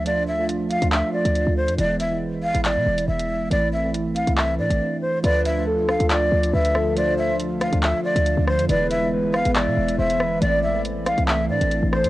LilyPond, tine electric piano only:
\new Staff \with { instrumentName = "Tine electric piano" } { \time 4/4 \key d \dorian \tempo 4 = 139 <f a d' f'>8 r16 <f a d' f'>8. r16 <f a d' f'>8 r16 <f a d' f'>4 r8 | <e gis b e'>8 r16 <e gis b e'>8. r16 <e gis b e'>4~ <e gis b e'>16 r4 | <e a c' e'>8 r16 <e a c' e'>8. r16 <e a c' e'>8 r16 <e a c' d'>4 r8 | <f a d' f'>8 r16 <f a d' f'>8. r16 <f a d' f'>4~ <f a d' f'>16 r4 |
<f a d' f'>8 r16 <f a d' f'>8. r16 <f a d' f'>8 r16 <f a d' f'>4 r8 | <e gis b e'>8 r16 <e gis b e'>8. r16 <e gis b e'>4~ <e gis b e'>16 r4 | <e a c' e'>8 r16 <e a c' e'>8. r16 <e a c' e'>8 r16 <e a c' d'>4 r8 | }